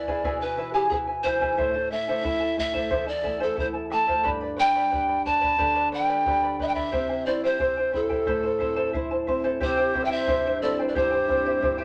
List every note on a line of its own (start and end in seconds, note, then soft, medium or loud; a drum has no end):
0.00 0.20 E2 medium
0.00 0.23 E3 soft
0.00 0.43 D5 medium
0.07 0.24 E4 medium
0.07 0.23 G#4 soft
0.07 0.24 B4 medium
0.07 0.24 E5 medium
0.07 0.24 G#5 medium
0.07 bombo low soft
0.24 1.54 B2 medium
0.24 0.41 E4 medium
0.24 0.41 G#4 medium
0.24 0.41 B4 medium
0.24 0.41 E5 medium
0.24 0.41 G#5 medium
0.24 bombo low medium
0.41 0.57 E4 soft
0.41 0.73 B4 medium
0.41 0.57 B4 soft
0.41 0.58 G#5 soft
0.57 0.90 E3 soft
0.57 0.74 E4 medium
0.57 0.73 B4 medium
0.57 0.74 E5 medium
0.57 0.73 G#5 medium
0.73 0.91 E4 medium
0.73 0.89 G4 medium
0.73 0.92 G#4 medium
0.73 0.91 B4 medium
0.73 0.90 E5 medium
0.73 0.91 G#5 medium
0.89 1.23 B3 medium
0.89 1.08 E4 medium
0.89 0.97 G#4 medium
0.89 1.07 B4 medium
0.89 1.08 E5 medium
0.89 1.06 G#5 medium
0.89 bombo low medium
1.07 1.24 E4 soft
1.07 1.24 B4 soft
1.07 1.24 G#5 soft
1.23 1.57 E3 soft
1.23 1.40 E4 medium
1.23 1.40 B4 medium
1.23 1.93 C5 medium
1.23 1.40 E5 medium
1.23 1.40 G#5 medium
1.23 bombo low soft
1.41 1.57 E4 medium
1.41 1.57 G#4 soft
1.41 1.58 B4 medium
1.41 1.57 E5 medium
1.41 1.58 G#5 medium
1.41 bombo low soft
1.58 2.87 A2 medium
1.58 1.74 E4 medium
1.58 1.74 A4 medium
1.58 1.75 C5 medium
1.58 1.75 E5 medium
1.58 1.73 A5 medium
1.58 bombo low medium
1.75 1.90 E4 soft
1.75 1.91 A4 soft
1.75 1.91 A5 soft
1.91 2.23 A3 soft
1.91 2.07 E4 medium
1.91 2.07 A4 medium
1.91 2.08 E5 medium
1.91 2.58 E5 loud
1.91 2.07 A5 medium
2.08 2.23 E4 medium
2.08 2.23 A4 medium
2.08 2.25 C5 soft
2.08 2.23 E5 medium
2.08 2.24 A5 medium
2.24 2.57 E4 medium
2.24 2.40 E4 medium
2.24 2.39 A4 medium
2.24 2.41 E5 medium
2.24 2.39 A5 medium
2.24 bombo low medium
2.40 2.57 E4 soft
2.40 2.57 A4 soft
2.40 2.57 A5 soft
2.57 2.90 A3 soft
2.57 2.73 E4 medium
2.57 2.73 A4 medium
2.57 2.73 E5 medium
2.57 3.10 E5 medium
2.57 2.72 A5 medium
2.57 bombo low soft
2.74 2.90 E4 medium
2.74 2.90 A4 medium
2.74 2.89 C5 soft
2.74 2.90 E5 medium
2.74 2.91 A5 medium
2.74 bombo low soft
2.90 4.21 E2 medium
2.90 3.07 E4 medium
2.90 3.06 A4 medium
2.90 3.08 C5 medium
2.90 3.08 E5 medium
2.90 3.05 A5 medium
2.90 bombo low medium
3.06 3.23 E4 soft
3.06 3.23 A4 soft
3.06 3.44 D5 medium
3.06 3.23 A5 soft
3.23 3.57 A3 medium
3.23 3.39 E4 medium
3.23 3.39 A4 medium
3.23 3.39 E5 medium
3.23 3.39 A5 medium
3.23 bombo low soft
3.40 3.55 E4 medium
3.40 3.55 A4 medium
3.40 3.59 A4 medium
3.40 3.58 C5 medium
3.40 3.55 E5 medium
3.40 3.56 A5 medium
3.56 3.74 E4 medium
3.56 3.91 E4 medium
3.56 3.73 A4 medium
3.56 3.67 C5 medium
3.56 3.74 E5 medium
3.56 3.72 A5 medium
3.56 bombo low medium
3.74 3.90 E4 soft
3.74 3.90 A4 soft
3.74 3.90 A5 soft
3.90 4.24 A3 soft
3.90 4.06 E4 medium
3.90 4.06 A4 medium
3.90 4.06 E5 medium
3.90 4.06 A5 medium
3.90 4.30 A5 medium
3.90 bombo rim soft
4.07 4.23 E4 soft
4.07 4.24 A4 soft
4.07 4.23 C5 soft
4.07 4.23 E5 soft
4.07 4.24 A5 medium
4.07 bombo low soft
4.24 5.55 G2 medium
4.24 4.41 G4 medium
4.24 4.41 B4 medium
4.24 4.41 D5 medium
4.24 4.41 G5 medium
4.24 4.40 B5 medium
4.24 bombo low medium
4.41 4.56 B4 soft
4.41 4.57 D5 soft
4.41 4.57 B5 soft
4.57 4.91 B3 soft
4.57 4.74 B4 medium
4.57 4.75 D5 medium
4.57 4.74 G5 medium
4.57 5.22 G5 loud
4.57 4.74 B5 medium
4.75 4.93 G4 soft
4.75 4.90 B4 soft
4.75 4.91 D5 medium
4.75 4.89 G5 soft
4.75 4.91 B5 medium
4.90 5.25 G4 medium
4.90 5.08 B4 medium
4.90 5.07 D5 medium
4.90 5.08 G5 medium
4.90 5.07 B5 medium
4.90 bombo low medium
5.08 5.25 B4 soft
5.08 5.25 D5 soft
5.08 5.25 B5 soft
5.25 5.58 B3 soft
5.25 5.41 B4 medium
5.25 5.40 D5 soft
5.25 5.41 G5 medium
5.25 5.89 A5 medium
5.25 5.40 B5 medium
5.25 bombo low soft
5.41 5.57 G4 soft
5.41 5.58 B4 soft
5.41 5.58 D5 medium
5.41 5.57 G5 soft
5.41 5.58 B5 medium
5.41 bombo low medium
5.58 6.89 D3 medium
5.58 5.75 G4 medium
5.58 5.75 B4 medium
5.58 5.74 D5 medium
5.58 5.76 G5 medium
5.58 5.73 B5 medium
5.58 bombo low medium
5.74 5.91 B4 soft
5.74 5.91 D5 soft
5.74 5.92 B5 soft
5.92 6.25 B3 soft
5.92 6.08 B4 medium
5.92 6.08 D5 medium
5.92 6.09 G5 medium
5.92 6.56 G5 medium
5.92 6.08 B5 medium
6.09 6.27 G4 soft
6.09 6.25 B4 medium
6.09 6.26 D5 medium
6.09 6.25 G5 soft
6.09 6.26 B5 medium
6.26 6.58 G4 medium
6.26 6.43 B4 medium
6.26 6.42 D5 medium
6.26 6.43 G5 medium
6.26 6.41 B5 medium
6.26 bombo low medium
6.43 6.58 B4 soft
6.43 6.59 D5 soft
6.43 6.59 B5 soft
6.59 6.92 B3 soft
6.59 6.74 B4 medium
6.59 6.75 D5 medium
6.59 6.69 E5 medium
6.59 6.75 G5 medium
6.59 6.74 B5 medium
6.59 bombo low soft
6.68 6.76 G5 medium
6.75 6.91 G4 soft
6.75 6.92 B4 soft
6.75 6.92 D5 medium
6.75 7.27 E5 medium
6.75 6.91 G5 soft
6.75 6.92 B5 medium
6.75 bombo low soft
6.92 8.23 C3 medium
6.92 7.09 E4 medium
6.92 7.09 G4 medium
6.92 7.09 C5 medium
6.92 7.09 E5 medium
6.92 7.08 G5 medium
6.92 bombo low medium
7.09 7.25 E4 soft
7.09 7.25 C5 soft
7.09 7.26 G5 soft
7.26 7.43 E4 medium
7.26 7.59 E4 soft
7.26 7.42 C5 medium
7.26 7.46 D5 medium
7.26 7.43 E5 medium
7.26 7.42 G5 medium
7.43 7.60 E4 medium
7.43 7.60 G4 medium
7.43 7.59 C5 medium
7.43 7.94 C5 medium
7.43 7.59 E5 medium
7.43 7.59 G5 medium
7.60 7.77 E4 medium
7.60 7.92 G4 medium
7.60 7.77 C5 medium
7.60 7.77 E5 medium
7.60 7.76 G5 medium
7.60 bombo low medium
7.77 7.91 E4 soft
7.77 7.92 C5 soft
7.77 7.92 G5 soft
7.92 8.09 E4 medium
7.92 8.26 E4 soft
7.92 8.91 A4 medium
7.92 8.08 C5 medium
7.92 8.09 E5 medium
7.92 8.08 G5 medium
7.92 bombo low soft
8.09 8.26 E4 medium
8.09 8.27 G4 soft
8.09 8.26 C5 soft
8.09 8.25 E5 soft
8.09 8.27 G5 medium
8.09 bombo low soft
8.26 9.57 A2 medium
8.26 8.43 E4 medium
8.26 8.43 A4 medium
8.26 8.43 C5 medium
8.26 8.44 E5 medium
8.26 8.42 A5 medium
8.26 bombo low medium
8.43 8.58 E4 soft
8.43 8.59 C5 soft
8.43 8.59 A5 soft
8.59 8.94 C4 soft
8.59 8.76 E4 medium
8.59 8.75 C5 medium
8.59 8.76 E5 medium
8.59 8.75 A5 medium
8.59 bombo low soft
8.76 8.93 E4 medium
8.76 8.93 A4 medium
8.76 8.93 C5 medium
8.76 8.92 E5 medium
8.76 8.94 A5 medium
8.93 9.11 E4 medium
8.93 9.27 E4 medium
8.93 9.10 C5 medium
8.93 9.10 E5 medium
8.93 9.10 A5 medium
8.93 bombo low medium
9.11 9.26 E4 soft
9.11 9.27 C5 soft
9.11 9.28 A5 soft
9.27 9.60 C4 soft
9.27 9.44 E4 medium
9.27 9.43 C5 medium
9.27 9.43 E5 medium
9.27 9.43 A5 medium
9.27 bombo low soft
9.44 9.60 E4 medium
9.44 9.61 A4 soft
9.44 9.60 C5 medium
9.44 9.59 E5 medium
9.44 9.61 A5 medium
9.61 10.27 C3 medium
9.61 9.78 E4 medium
9.61 9.78 G4 medium
9.61 10.05 G4 medium
9.61 9.77 C5 medium
9.61 10.06 C5 medium
9.61 9.78 E5 medium
9.61 9.76 G5 medium
9.61 bombo low medium
9.77 9.92 E4 soft
9.77 9.93 C5 soft
9.77 9.94 G5 medium
9.94 10.48 G3 soft
9.94 10.48 C4 soft
9.94 10.09 E4 medium
9.94 10.49 E4 soft
9.94 10.10 C5 medium
9.94 10.10 E5 medium
9.94 10.10 G5 medium
9.94 bombo low medium
10.04 10.12 E5 medium
10.04 10.13 G5 medium
10.11 10.27 E4 medium
10.11 10.28 G4 soft
10.11 10.61 C5 medium
10.11 10.27 C5 medium
10.11 10.27 E5 medium
10.11 10.61 E5 loud
10.11 10.28 G5 medium
10.28 10.93 G2 medium
10.28 10.45 E4 medium
10.28 10.45 C5 medium
10.28 10.45 E5 medium
10.28 10.45 G5 medium
10.28 bombo low medium
10.46 10.62 E4 medium
10.46 10.63 G4 soft
10.46 10.62 C5 medium
10.46 10.61 E5 soft
10.46 10.62 G5 medium
10.61 11.16 G3 soft
10.61 11.16 C4 soft
10.61 10.79 E4 medium
10.61 11.16 E4 medium
10.61 10.86 A4 medium
10.61 10.79 C5 medium
10.61 10.86 D5 medium
10.61 10.79 E5 medium
10.61 10.78 G5 medium
10.79 10.95 E4 soft
10.79 10.95 C5 soft
10.79 10.95 G5 soft
10.87 10.96 B4 soft
10.87 10.98 D5 medium
10.94 11.60 G2 medium
10.94 11.11 E4 medium
10.94 11.12 G4 medium
10.94 11.84 G4 medium
10.94 10.99 G#4 medium
10.94 11.11 C5 medium
10.94 11.84 C5 medium
10.94 11.12 E5 medium
10.94 11.10 G5 medium
10.94 bombo low medium
11.11 11.29 E4 soft
11.11 11.29 C5 soft
11.11 11.28 G5 soft
11.28 11.82 G3 soft
11.28 11.82 C4 soft
11.28 11.82 E4 medium
11.28 11.45 E4 medium
11.28 11.44 C5 medium
11.28 11.45 E5 medium
11.28 11.44 G5 medium
11.28 bombo low medium
11.45 11.61 E4 medium
11.45 11.63 G4 soft
11.45 11.62 C5 medium
11.45 11.61 E5 soft
11.45 11.62 G5 medium
11.62 11.84 G2 medium
11.62 11.77 E4 medium
11.62 11.77 C5 medium
11.62 11.78 E5 medium
11.62 11.77 G5 medium
11.62 bombo low medium
11.78 11.84 E4 medium
11.78 11.84 G4 medium
11.78 11.84 C5 medium
11.78 11.84 E5 medium
11.78 11.84 G5 medium